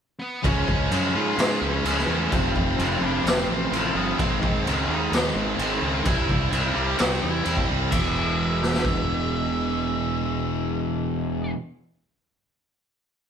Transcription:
0.19 lead electric guitar B3 B4
0.43 fingered electric bass C#2, distorted electric guitar C#3 F3 G#3 C#4, lead electric guitar C#4 C#5, kick, crash
0.68 fingered electric bass C#2, clean electric guitar F3 G#3 C#4, kick
0.90 fingered electric bass F#2, distorted electric guitar C#3 F3 G#3 C#4, crash
1.14 fingered electric bass G#2, distorted electric guitar C#3 F3 G#3 C#4, lead electric guitar F4 F5
1.37 fingered electric bass G#2, distorted electric guitar C#3 F3 G#3 C#4, snare, crash
1.61 fingered electric bass C#2, clean electric guitar F3 G#3 C#4, lead electric guitar C#4 C#5
1.84 fingered electric bass C#2, distorted electric guitar C#3 F3 G#3 C#4, crash
1.98 snare
2.07 fingered electric bass E2, distorted electric guitar C#3 F3 G#3 C#4
2.18 lead electric guitar B4
2.31 fingered electric bass F1, distorted electric guitar F2 C3 F3 A3 C4, lead electric guitar C4 C5, kick, crash
2.55 fingered electric bass F1, clean electric guitar F3 A3 C4, kick
2.78 fingered electric bass F1, distorted electric guitar F2 C3 F3 A3 C4, crash
3.00 fingered electric bass F1, distorted electric guitar F2 C3 F3 A3 C4, lead electric guitar D4 D5
3.23 fingered electric bass F1, distorted electric guitar F2 C3 F3 A3 C4, lead electric guitar C4 C5, crash
3.28 snare
3.47 fingered electric bass A1, clean electric guitar A3 C4, lead electric guitar C4 C5
3.51 clean electric guitar F3
3.71 fingered electric bass A1, distorted electric guitar F2 C3 F3 A3 C4, crash
3.94 fingered electric bass G1, distorted electric guitar F2 C3 F3 A3 C4, lead electric guitar B3 B4
4.18 fingered electric bass G#1, distorted electric guitar G#2 D#3 G#3 C4 D#4, lead electric guitar C4 C5, kick, crash
4.43 fingered electric bass G#1, kick
4.65 fingered electric bass C#2, distorted electric guitar G#2 D#3 G#3 C4 D#4, crash
4.87 fingered electric bass D#2, distorted electric guitar G#2 D#3 G#3 C4 D#4, lead electric guitar D#4 D#5
5.12 fingered electric bass D#2, distorted electric guitar G#2 D#3 G#3 C4 D#4, snare, crash
5.34 fingered electric bass G#1, lead electric guitar C4 C5
5.58 fingered electric bass G#1, distorted electric guitar G#2 D#3 G#3 C4 D#4, crash
5.82 fingered electric bass C#2, distorted electric guitar G#2 D#3 G#3 C4 D#4
6.05 fingered electric bass C2, distorted electric guitar C3 G3 C4 E4, lead electric guitar E4 E5, kick, crash
6.29 fingered electric bass C2, kick
6.50 fingered electric bass C2, distorted electric guitar C3 G3 C4 E4, crash
6.75 fingered electric bass C2, distorted electric guitar C3 G3 C4 E4, lead electric guitar G4 G5
6.97 fingered electric bass C2, distorted electric guitar C3 G3 C4 E4, lead electric guitar F#4 F#5, snare, crash
7.23 fingered electric bass E2, lead electric guitar E4 E5
7.44 fingered electric bass E2, distorted electric guitar C3 G3 C4 E4, crash
7.57 kick
7.68 fingered electric bass C2, distorted electric guitar C3 G3 C4 E4
7.90 fingered electric bass E1, overdriven electric guitar E2 B2, distorted electric guitar E3 G#3 B3 E4, lead electric guitar E5, kick, crash
7.94 overdriven electric guitar E3
8.63 snare
8.74 snare
8.85 kick

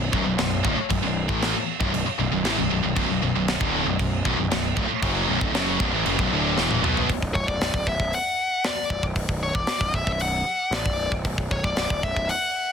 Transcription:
Already playing: picked electric bass B0
0.12 picked electric bass B0, distorted electric guitar B1 F#2, kick
0.24 picked electric bass B0, distorted electric guitar B1 F#2
0.38 picked electric bass B0, distorted electric guitar B1 F#2, snare, crash
0.64 picked electric bass D1, distorted electric guitar D2 A2, kick
0.77 muted distorted electric guitar stroke, muted picked electric bass stroke
0.89 picked electric bass B0, distorted electric guitar B1 F#2, kick, crash
1.02 picked electric bass B0, distorted electric guitar B1 F#2
1.29 picked electric bass A1, distorted electric guitar A2 E3 A3, kick
1.42 snare, crash
1.80 picked electric bass B0, distorted electric guitar B1 F#2, kick
1.92 picked electric bass B0, distorted electric guitar B1 F#2, crash
2.06 muted picked electric bass stroke, muted distorted electric guitar stroke
2.18 picked electric bass B0, distorted electric guitar B1 F#2
2.31 picked electric bass B0, distorted electric guitar B1 F#2
2.44 picked electric bass A1, distorted electric guitar A2 E3, snare, crash
2.57 picked electric bass B0, distorted electric guitar B1 F#2
2.71 picked electric bass B0, distorted electric guitar B1 F#2
2.83 picked electric bass B0, distorted electric guitar B1 F#2
2.95 picked electric bass B0, distorted electric guitar B1 F#2, kick, crash
3.09 picked electric bass B0, distorted electric guitar B1 F#2
3.22 picked electric bass B0, distorted electric guitar B1 F#2
3.34 picked electric bass B0, distorted electric guitar B1 F#2
3.48 snare, crash
3.60 picked electric bass D1, distorted electric guitar D2 A2 D3, kick
3.85 picked electric bass B0, distorted electric guitar B1 F#2
3.99 picked electric bass B0, distorted electric guitar B1 F#2, kick, crash
4.25 picked electric bass B0, distorted electric guitar B1 F#2, kick
4.37 picked electric bass B0, distorted electric guitar B1 F#2
4.51 picked electric bass B0, distorted electric guitar B1 F#2, snare, crash
4.76 picked electric bass D1, distorted electric guitar D2 A2, kick
4.89 muted picked electric bass stroke, muted distorted electric guitar stroke
5.02 picked electric bass F#1, distorted electric guitar F#2 C#3 F#3, kick, crash
5.27 picked electric bass B0, distorted electric guitar B1 F#2
5.40 picked electric bass D1, distorted electric guitar D2 A2, kick
5.54 picked electric bass F#1, distorted electric guitar F#2 C#3 F#3, snare, crash
5.80 picked electric bass B0, distorted electric guitar B1 F#2, kick
5.92 picked electric bass A1, distorted electric guitar A2 E3
6.05 picked electric bass F#1, distorted electric guitar F#2 C#3, crash
6.18 picked electric bass B0, distorted electric guitar B1 F#2, kick
6.30 picked electric bass D1, distorted electric guitar D2 A2 D3
6.57 picked electric bass E1, distorted electric guitar E2 B2 E3, snare
6.71 high tom
6.82 picked electric bass B1, distorted electric guitar B2 F#3 B3, mid tom
6.97 floor tom
7.09 picked electric bass B0, kick, open hi-hat
7.22 picked electric bass B0, kick
7.35 picked electric bass B0, lead electric guitar C#5, kick
7.48 picked electric bass B0, lead electric guitar D5, kick
7.60 picked electric bass B0, snare, open hi-hat
7.74 picked electric bass D1, kick
7.87 picked electric bass B0, lead electric guitar E5, kick
7.99 picked electric bass B0, kick
8.13 lead electric guitar F#5, open hi-hat
8.64 lead electric guitar D5, snare, open hi-hat
8.90 picked electric bass B0, kick
9.03 picked electric bass B0, kick
9.16 kick, open hi-hat
9.28 picked electric bass B0, kick
9.43 lead electric guitar C#5
9.54 picked electric bass E1, lead electric guitar D5, kick
9.67 muted picked electric bass stroke, snare, open hi-hat
9.80 picked electric bass B0, kick
9.93 picked electric bass B0, lead electric guitar E5, kick
10.07 picked electric bass B0, kick
10.12 lead electric guitar E5
10.20 lead electric guitar F#5, open hi-hat
10.45 muted picked electric bass stroke
10.71 picked electric bass A1, lead electric guitar D5, snare, open hi-hat
10.85 picked electric bass B0, kick
11.11 picked electric bass B0, kick
11.25 picked electric bass B0, kick, open hi-hat
11.38 picked electric bass B0, kick
11.50 picked electric bass B0, lead electric guitar C#5, kick
11.64 picked electric bass B0, lead electric guitar D5, kick
11.77 picked electric bass B0, snare, open hi-hat
11.90 picked electric bass D1, kick
12.03 picked electric bass B0, lead electric guitar E5, kick
12.16 picked electric bass B0, kick
12.29 lead electric guitar F#5, open hi-hat

